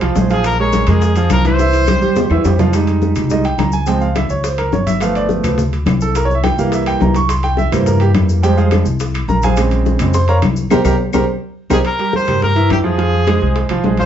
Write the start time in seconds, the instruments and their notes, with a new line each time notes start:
0.01 upright bass C2, grand piano F3 F4 F5, high bongo, high conga, high timbale, claves
0.15 upright bass A#1, grand piano G#3 G#4 C5, high bongo, low bongo, high conga, low timbale, maracas
0.30 grand piano F3 F4 F5, trumpet G#4, high bongo, high timbale, maracas
0.44 trumpet A#4, high bongo, high conga, high timbale, claves, maracas
0.59 grand piano G#3 G#4 A#4, trumpet C#5, high conga
0.73 high bongo, high conga, high timbale, maracas
0.87 upright bass F2, grand piano G#3 G#4 A#4, trumpet G#4, high conga, low conga, high timbale, claves, maracas
1.02 high bongo, high conga, maracas
1.16 grand piano F3 F4 F5, high conga, high timbale, maracas
1.30 upright bass C2, trumpet A#4, high bongo, low bongo, high conga, high timbale, low timbale, claves, maracas
1.44 grand piano E3 E4 E5, trumpet C5, high conga, high timbale, maracas
1.59 grand piano E3 E4 E5, high bongo, high conga, maracas
1.73 high bongo, high conga, high timbale, maracas
1.87 grand piano G3 G4 C5, high bongo, high conga, high timbale, claves, maracas
2.01 upright bass E2, grand piano G3 G4 C5, high conga, maracas
2.16 high bongo, low conga, high timbale, maracas
2.30 upright bass E2, grand piano E3 E4 E5, low timbale, claves
2.44 upright bass F2, grand piano G3 G4 C5, high bongo, low bongo, low timbale, maracas
2.59 grand piano F3 F4 F5, high bongo, low conga, low timbale, maracas
2.73 grand piano G3 G#3 D#4, high bongo, high conga, high timbale, claves, maracas
2.87 high bongo, high conga, high timbale, maracas
3.02 high bongo, high conga, maracas
3.15 upright bass C2, high conga, low conga, high timbale, claves, maracas
3.30 grand piano G3 G#3 D#4 D#5, high bongo, high conga, low conga, maracas
3.44 grand piano G5, high bongo, high conga, high timbale, maracas
3.58 upright bass C#2, grand piano A#5, high bongo, low bongo, high conga, high timbale, low timbale, claves, maracas
3.72 grand piano G#5, high bongo, high conga, maracas
3.86 grand piano F3 G#3 C4 G5, high bongo, high conga, high timbale, maracas
4.01 grand piano F5, high bongo, high conga, maracas
4.15 grand piano E5, high bongo, high conga, high timbale, claves, maracas
4.29 upright bass C#2, grand piano C#5, maracas
4.44 grand piano C5, high bongo, high conga, high timbale, maracas
4.58 grand piano A#4, high bongo, high conga, high timbale, claves, maracas
4.72 upright bass G1, grand piano C#5, high bongo, low bongo, high conga, low timbale, maracas
4.87 grand piano E5, high bongo, high conga, high timbale, maracas
5.00 grand piano F3 A3 B3 F5, high bongo, high conga, high timbale, claves, maracas
5.15 grand piano D5, high bongo, high conga, high timbale, maracas
5.29 high bongo, high conga, maracas
5.44 upright bass D2, grand piano F3 A3 B3, high conga, low conga, high timbale, claves, maracas
5.58 high bongo, high conga, low conga, maracas
5.72 high bongo, high conga, high timbale, maracas
5.86 upright bass C2, high bongo, low bongo, high conga, high timbale, low timbale, claves, maracas
6.01 grand piano A4, high bongo, high conga, maracas
6.15 grand piano A#4, high bongo, high conga, high timbale, maracas
6.25 grand piano C#5
6.29 high bongo, high conga, maracas
6.35 grand piano E5
6.43 grand piano G5, high bongo, high conga, high timbale, claves, maracas
6.58 upright bass C2, grand piano E3 G3 A#3 F5, maracas
6.72 grand piano E5, high bongo, high conga, high timbale, maracas
6.86 grand piano G5, high bongo, high conga, high timbale, claves, maracas
7.00 upright bass C2, grand piano E3 G3 A#3 A#5, high bongo, low bongo, high conga, low timbale, maracas
7.14 grand piano C#6, high bongo, high conga, high timbale, maracas
7.29 grand piano C6, high bongo, high conga, high timbale, claves, maracas
7.43 grand piano G5, high bongo, high conga, high timbale, maracas
7.57 grand piano E5, high bongo, high conga, maracas
7.72 upright bass G2, grand piano E3 G3 A#3 C5, high conga, low conga, high timbale, claves, maracas
7.86 grand piano A#4, high bongo, high conga, low conga, maracas
8.00 grand piano G4, high bongo, high timbale, maracas
8.14 upright bass F2, high bongo, low bongo, high conga, high timbale, low timbale, claves, maracas
8.29 high bongo, high conga, maracas
8.43 grand piano F3 G3 G#3 G4 C5 G5, high bongo, high timbale, maracas
8.57 grand piano F4 G#4 C5 F5, high bongo, high conga, maracas
8.71 high bongo, high conga, high timbale, claves, maracas
8.85 upright bass C2, maracas
9.00 high bongo, high conga, high timbale, maracas
9.14 high bongo, high conga, high timbale, claves, maracas
9.28 upright bass A#1, grand piano A#4 A#5, high bongo, low bongo, high conga, maracas
9.42 grand piano G#4 C5 F5 G#5, high bongo, high conga, high timbale, maracas
9.56 grand piano C#3 G#3 C4, high bongo, high conga, high timbale, claves, maracas
9.71 high bongo, high conga, high timbale, maracas
9.86 high bongo, high conga, maracas
9.99 upright bass F2, grand piano C#3 G#3 C4, high conga, low conga, high timbale, claves, maracas
10.14 grand piano C5 C6, high bongo, maracas
10.28 grand piano A#4 C#5 F5 A#5, high bongo, high conga, high timbale, maracas
10.42 upright bass C2, high bongo, low bongo, high conga, high timbale, low timbale, claves, maracas
10.56 high bongo, high conga, maracas
10.70 upright bass C2, grand piano G4 A#4 C5, low bongo, high conga, high timbale, claves, maracas
10.84 upright bass C2, grand piano G4 A#4 C5, low bongo, high conga, high timbale, claves, maracas
11.12 upright bass C2, grand piano G4 A#4 C5, low bongo, high conga, high timbale, claves, maracas
11.70 upright bass C2, grand piano G4 A#4 C5, trumpet G#4, low bongo, high conga, high timbale, claves, maracas
11.84 trumpet A#4, high bongo, high conga, high timbale, claves
11.99 grand piano G3 G4 A#4, high bongo, high conga, high timbale
12.13 trumpet C5, high bongo, high conga
12.27 upright bass G2, grand piano G3 G4 A#4, high conga, low conga, high timbale, claves
12.42 trumpet A#4, high bongo, high conga, low conga
12.55 grand piano E3 E4 E5, high conga, high timbale
12.70 upright bass F2, trumpet G4, high bongo, low bongo, high conga, high timbale, low timbale, claves
12.84 grand piano F3 F4 F5, trumpet G#4, high bongo, high conga
12.98 grand piano F3 F4 F5, high bongo, high conga, high timbale
13.13 high bongo, high conga
13.27 grand piano G#3 G#4 C5, high bongo, high conga, high timbale, claves
13.41 upright bass C2, grand piano G#3 G#4 C5
13.56 high bongo, high conga, high timbale
13.69 upright bass C2, grand piano F3 F4 F5, high bongo, high conga, high timbale, claves
13.84 upright bass A#1, grand piano G#3 G#4 C5, high bongo, low bongo, high conga, low timbale
13.97 grand piano F3 F4 F5, trumpet C5, high bongo, high conga, high timbale